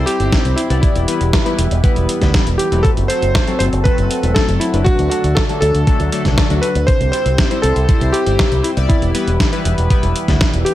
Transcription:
Already playing: G3 C4 E4 G4 C5
0.06 G4, closed hi-hat
0.20 G1 G3 C4 E4 C5, closed hi-hat
0.33 kick, snare, closed hi-hat
0.45 C2, closed hi-hat
0.56 E4, closed hi-hat
0.70 C2 G3 B3 E4 D5, closed hi-hat
0.81 E3 E4 B4, kick, closed hi-hat
0.96 E1, closed hi-hat
1.08 G3 B3 E4 B4, closed hi-hat
1.21 E1, closed hi-hat
1.33 kick, snare, closed hi-hat
1.46 G3 B3 E4 B4, closed hi-hat
1.59 E1, closed hi-hat
1.71 E1, closed hi-hat
1.84 G3 B3 E4 B4, kick, closed hi-hat
1.96 E1, closed hi-hat
2.09 closed hi-hat
2.21 D2 G3 B3 E4 B4, kick, snare, closed hi-hat
2.34 kick, snare, closed hi-hat
2.47 E1, closed hi-hat
2.58 G4, closed hi-hat
2.72 E1 F#3 A3 C4 B4, closed hi-hat
2.83 F#3 C4 F#4 A4, kick, closed hi-hat
2.97 F#1, closed hi-hat
3.08 F#3 A3 C4 A4 C5, closed hi-hat
3.22 F#1, closed hi-hat
3.35 kick, snare, closed hi-hat
3.48 F#3 A3 C4 A4, closed hi-hat
3.59 F#1 C5, closed hi-hat
3.73 F#1, closed hi-hat
3.84 F#3 A3 C4 A4 B4, kick, closed hi-hat
3.98 F#1, closed hi-hat
4.11 closed hi-hat
4.23 E1 F#3 A3 C4 A4, closed hi-hat
4.34 A4, kick, snare, closed hi-hat
4.48 F#1, closed hi-hat
4.60 E4, closed hi-hat
4.74 F#1 F#3 A3 D4 B4, closed hi-hat
4.84 D3 D4 F#4 A4, kick, closed hi-hat
4.99 D2, closed hi-hat
5.10 F#3 A3 D4 F#4 A4, closed hi-hat
5.24 D2, closed hi-hat
5.35 A4, kick, snare, closed hi-hat
5.49 F#3 A3 D4 A4, closed hi-hat
5.61 D2 A4, closed hi-hat
5.75 D2, closed hi-hat
5.87 F#3 A3 D4 A4, kick, closed hi-hat
6.00 D2, closed hi-hat
6.12 F#3 A3 D4 A4, closed hi-hat
6.25 C2, kick, snare, closed hi-hat
6.38 kick, snare, closed hi-hat
6.50 D2 F#3 A3 D4 F#4, closed hi-hat
6.62 B4, closed hi-hat
6.75 D2, closed hi-hat
6.87 C4 E4 G4 C5, kick, closed hi-hat
7.00 C2, closed hi-hat
7.12 G3 C4 E4 C5, closed hi-hat
7.26 C2, closed hi-hat
7.38 kick, snare, closed hi-hat
7.51 G3 C4 E4 C5, closed hi-hat
7.62 C2 A4, closed hi-hat
7.76 C2, closed hi-hat
7.89 G3 C4 E4 C5, kick, closed hi-hat
8.01 C2, closed hi-hat
8.13 G4, closed hi-hat
8.26 G1 G3 C4 E4 C5, closed hi-hat
8.39 kick, snare, closed hi-hat
8.52 C2, closed hi-hat
8.63 E4, closed hi-hat
8.77 C2 G3 B3 E4 D5, closed hi-hat
8.89 E3 E4 B4, kick, closed hi-hat
9.02 E1, closed hi-hat
9.15 G3 B3 E4 B4, closed hi-hat
9.27 E1, closed hi-hat
9.40 kick, snare, closed hi-hat
9.52 G3 B3 E4 B4, closed hi-hat
9.65 E1, closed hi-hat
9.78 E1, closed hi-hat
9.90 G3 B3 E4 B4, kick, closed hi-hat
10.03 E1, closed hi-hat
10.16 closed hi-hat
10.28 D2 G3 B3 E4 B4, kick, snare, closed hi-hat
10.41 kick, snare, closed hi-hat
10.53 E1, closed hi-hat
10.65 G4, closed hi-hat

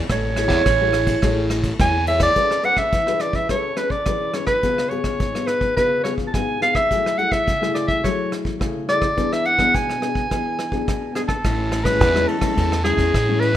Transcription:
0.10 A1 A3 C#5, kick, cross-stick, ride
0.36 E4 G#4 C#5, cross-stick, ride
0.48 E2, kick, ride
0.66 A1 E3, kick, cross-stick, ride
0.81 E4 G#4 C#5
0.93 cross-stick, ride
1.07 kick, ride
1.22 A1 A3 E4 G#4 C#5, kick, cross-stick, ride
1.50 cross-stick, ride
1.64 kick, ride
1.79 E2 E3 E4 G#4 C#5 G#5, kick, cross-stick, ride
2.07 E4 G#4 C#5 E5, ride
2.20 D5, kick, cross-stick, ride
2.35 A3 C#4 G#4 B4, kick, closed hi-hat
2.51 cross-stick
2.63 C#4 G#4 B4 F#5, closed hi-hat
2.77 E5, kick, cross-stick
2.92 E3, kick, closed hi-hat
3.07 C#4 G#4 B4, cross-stick
3.20 D5, cross-stick, closed hi-hat
3.33 E5, kick, closed hi-hat
3.49 A3 C#4 G#4 B4 C#5, kick, cross-stick, closed hi-hat
3.76 C#4 G#4 B4, cross-stick, closed hi-hat
3.90 D5, kick
4.06 E3 C#4 G#4 B4, kick, cross-stick, closed hi-hat
4.34 C#4 G#4 B4 C#5, cross-stick, closed hi-hat
4.46 B4, kick, cross-stick
4.63 C#3 B3 F4 G#4, kick, closed hi-hat
4.78 cross-stick
4.89 B3 F4 G#4 C#5, closed hi-hat
5.04 kick, cross-stick
5.20 G#2, kick, closed hi-hat
5.35 B3 F4 G#4, cross-stick, closed hi-hat
5.46 B4, cross-stick, closed hi-hat
5.61 kick
5.76 C#3 B3 F4 G#4 B4, kick, cross-stick, closed hi-hat
6.03 B3 F4 G#4 C#5, cross-stick, closed hi-hat
6.18 kick
6.27 A5
6.34 G#2 B3 F4 G#4 G#5, kick, cross-stick, closed hi-hat
6.61 B3 F4 G#4 F5, cross-stick, closed hi-hat
6.75 E5, kick, cross-stick
6.91 F#3 A3 E4 G#4, kick, closed hi-hat
7.06 cross-stick
7.17 A3 E4 G#4 F#5, closed hi-hat
7.32 E5, kick, cross-stick
7.46 C#3, kick, closed hi-hat
7.61 A3 E4 G#4, cross-stick
7.72 D5 E5, cross-stick, closed hi-hat
7.87 E5, kick, closed hi-hat
8.03 F#3 A3 E4 G#4 C#5, kick, cross-stick, closed hi-hat
8.32 cross-stick, closed hi-hat
8.45 kick
8.59 C#3 A3 E4 G#4, kick, cross-stick, closed hi-hat
8.88 A3 E4 G#4 D5, cross-stick, closed hi-hat
9.02 kick, cross-stick
9.17 E3 B3 D4 G#4, kick, closed hi-hat
9.33 E5, cross-stick
9.45 F#5, closed hi-hat
9.58 B3 D4 G#4, kick, cross-stick
9.74 B2 G#5, kick, closed hi-hat
9.90 cross-stick, closed hi-hat
10.01 B3 D4 G#4, cross-stick, closed hi-hat
10.15 kick
10.30 E3 B3 D4 G#4, kick, cross-stick, closed hi-hat
10.59 cross-stick, closed hi-hat
10.72 B3 D4 G#4, kick
10.87 B2, kick, cross-stick, closed hi-hat
11.15 B3 D4 G#4, cross-stick, closed hi-hat
11.27 A4, kick, cross-stick
11.43 A1 A2 C#4 E4, kick, cross-stick, ride
11.72 cross-stick, ride
11.84 G#3 C#4 E4 B4, kick, cross-stick, ride
12.00 E2 E3, kick, ride
12.15 G#3 C#4 E4, cross-stick
12.28 A4, ride
12.41 G#3 C#4 E4, kick, cross-stick, ride
12.56 E2 A2 G#3 C#4 E4, kick, ride
12.72 cross-stick
12.83 G#3 C#4 E4 G#4, cross-stick, ride
12.97 E2, kick, ride
13.13 A2 E3, kick, cross-stick, ride
13.28 G#3 C#4 E4
13.40 B4, ride
13.54 G3

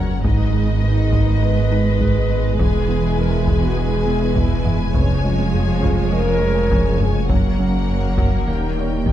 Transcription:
Already playing: F#1 F#2 A#2 C#3 F#3 C#4 A#4 B4 C#5 F#5 A#5
0.24 G#1 G#2 D#3 G#3 B3 D#4 G#4 B4 D#5, taiko
0.54 G#3 D#4
0.83 G#2 D#4
1.12 G#2 G#3, taiko
1.42 G#3 D#4 B4
1.71 G#3 D#4
2.01 G#2 G#3, taiko
2.30 G#3 D#4
2.59 E1 E2 E3 G#4 E5 G#5, taiko
2.88 E3 B3
3.18 E2 A#4
3.39 G#4
3.47 E2 E3, taiko
3.60 F#4
3.77 E3 B3 G#4
4.06 E3 B3
4.35 E2 E3 E4, taiko
4.65 E3 B3, taiko low-mid
4.94 F1 F2 C#3 F3 G#3 C#4 G#4 B4 C#5 F5, taiko
5.24 F3 G#3
5.54 F2 F4
5.83 F2 C#3, taiko
6.12 F3 G#3 A#4
6.42 F3 G#3
6.71 F2 C#3 C#5, taiko
7.00 F3 G#3 G#4, taiko low-mid
7.29 F#1 F#2 F#3 A#3 C#4 A#4 F#5, taiko
7.59 F#3 C#4
7.89 F#2
8.18 F#2 F#3, taiko
8.46 D#1 D#2 D#3 G3 A#3 D#4 D#5 G5
8.77 D#3 A#3 C#5
9.06 D#2 D#3, taiko

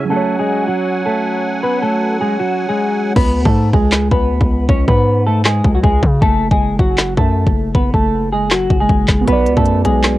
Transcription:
Already playing: C#3 C#4 E4 G#4 G#5
0.05 F#3 C#4
0.10 F#3 A3 F#4 A4 F#5
0.17 C#5
0.39 G#3 G#4
0.68 F#3 F#4
1.06 A3 A4
1.63 B3 B4
1.82 A3 A4
2.21 G#3 G#4
2.40 F#3 F#4
2.69 G#3 G#4
3.16 C#2 B3 B4, kick, crash
3.35 D2
3.45 G#2 A3 A4, kick
3.73 C#2 G#3 G#4, kick
3.92 snare, clap
4.12 C#2 B3 B4, kick
4.31 D2
4.41 C#2, kick
4.69 C#2 C#4 C#5, kick
4.88 G#2 B3 B4, kick
5.27 A3 A4
5.45 G#3 G#4, snare, clap
5.64 C#2, kick
5.75 F#3 F#4
5.83 C#2 G#3 G#4, kick
6.03 C#3, kick
6.22 F#1 A3 A4, kick
6.51 F#1 G#3 G#4, kick
6.79 F#1 F#3 F#4, kick
6.98 snare, clap
7.17 F#2 A3 A4, kick
7.47 F#1, kick
7.75 F#1 B3 B4, kick
7.94 F#1 A3 A4, kick
8.32 G#3 G#4
8.50 F#3 F#4, snare, clap
8.70 F#1, kick
8.80 G#3 G#4
8.89 F#1, kick
9.08 F#1, kick, snare, clap
9.21 B3 F#4
9.28 B1 B3 B4, kick, closed hi-hat
9.33 D5
9.46 C#2, closed hi-hat
9.57 F#2 A3 A4, kick
9.66 closed hi-hat
9.85 B1 G#3 G#4, kick, closed hi-hat
10.03 snare, clap, closed hi-hat

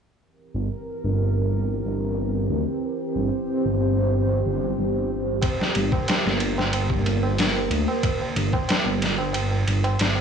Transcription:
0.20 E3 C4 G4 A#4
0.54 G1
1.04 G1
1.85 G1
2.50 D2
2.82 C5
3.16 G1
3.65 G1
4.46 G1
4.78 G1
5.42 D3 A#3 A#4, kick, ride, tabla na
5.60 snare, tabla na
5.75 G1, ride
5.92 kick, tabla na
6.08 snare, ride, tabla na
6.26 G1, snare, tabla na
6.40 ride
6.58 snare, tabla na
6.73 ride, tabla na
6.90 kick, tabla na
7.06 G1, ride
7.23 tabla na
7.38 snare, open hi-hat, tabla na
7.56 tabla na
7.70 D2, ride
7.88 tabla na
8.03 kick, ride, tabla na
8.22 tabla na
8.36 G1, ride
8.53 kick, tabla na
8.69 snare, ride, tabla na
8.86 G1, tabla na
9.02 snare, ride
9.18 tabla na
9.33 ride, tabla na
9.51 tabla na
9.67 G1, ride
9.84 ride, tabla na
9.99 G1, snare, ride, tabla na
10.15 tabla na

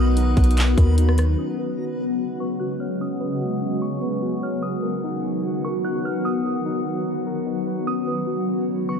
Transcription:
Already playing: B1 D#3 F#3 B3 D#4 F#4 A#4 B4 A#5 D#6
0.17 D#4, closed hi-hat
0.37 B1 B3, kick, closed hi-hat
0.44 closed hi-hat
0.51 closed hi-hat
0.57 clap, closed hi-hat
0.78 D#2 A#4, kick, closed hi-hat
0.98 D#4, closed hi-hat
1.09 cross-stick
1.18 B4, cross-stick, closed hi-hat
1.38 C#3 F#3 G#3 B3 C#4 F#4 D#6
1.59 B4
1.78 F#4
2.00 C#4
2.40 B4 C#6
2.60 F#4 F#6
2.80 C#5 F6
3.01 C#4 D#6
3.20 B4
3.41 F#4
3.61 C#4
3.82 C#6
4.01 B4
4.22 F#4
4.42 C#5 F6
4.63 D#3 B3 D#6
4.83 A#4
5.04 D#4
5.24 B3
5.65 A#4 C#6
5.84 D#4 F#6
6.04 B4 F6
6.25 B3 D#6
6.45 A#4
6.66 D#4
6.86 B3
7.27 A#4
7.46 D#4
7.67 B4
7.87 C#3 G#3 B3 C#4 F#4 C#5 B5 D#6
8.07 B4
8.27 F#4
8.48 C#4
8.89 B4 C#6

